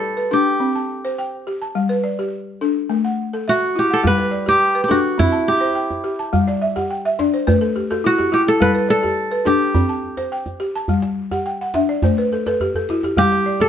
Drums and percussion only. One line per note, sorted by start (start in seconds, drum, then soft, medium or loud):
4.05 djembe bass medium
4.19 djembe slap soft
4.48 djembe tone medium
4.91 djembe slap medium
5.19 djembe tone medium
5.19 djembe bass medium
5.48 djembe slap soft
5.91 djembe slap soft
5.91 djembe tone soft
6.34 djembe bass medium
6.48 djembe slap medium
6.77 djembe tone medium
7.19 djembe slap medium
7.48 djembe tone medium
7.48 djembe bass medium
7.63 djembe slap soft
7.77 djembe slap soft
7.91 djembe slap soft
8.19 djembe slap soft
8.19 djembe tone soft
8.61 djembe bass medium
8.76 djembe slap soft
9.04 djembe tone soft
9.46 djembe slap medium
9.75 djembe tone medium
9.75 djembe bass medium
9.90 djembe slap soft
10.03 djembe slap soft
10.17 djembe slap soft
10.46 djembe slap soft
10.46 djembe tone soft
10.88 djembe bass medium
11.02 djembe slap medium
11.31 djembe slap soft
11.31 djembe tone medium
11.74 djembe slap medium
11.89 djembe slap soft
12.02 djembe tone medium
12.02 djembe bass medium
12.46 djembe slap medium
12.60 djembe bass soft
12.75 djembe bass soft
12.89 djembe slap soft
13.03 djembe slap medium
13.17 djembe bass medium
13.32 djembe slap soft
13.60 djembe tone medium